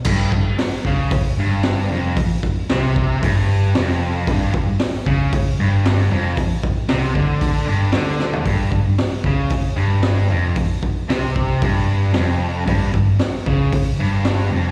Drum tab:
CC |x---------------|----------------|----------------|----------------|
HH |----o---o---o---|o---o---o---o---|o---o---o---o---|o---o---o---o---|
SD |----o-------o---|----o-------o---|----o-------o---|----o-------o-o-|
FT |----------------|----------------|----------------|---------------o|
BD |o-o---o-o-------|o-o---o-o-------|o-o---o-o-------|o-o---o-o-------|

CC |----------------|----------------|----------------|
HH |o---o---o---o---|o---o---o---o---|o---o---o---o---|
SD |----o-------o---|----o-------o---|----o-------o---|
FT |----------------|----------------|----------------|
BD |o-o---o-o-------|o-o---o-o-------|o-o---o-o-------|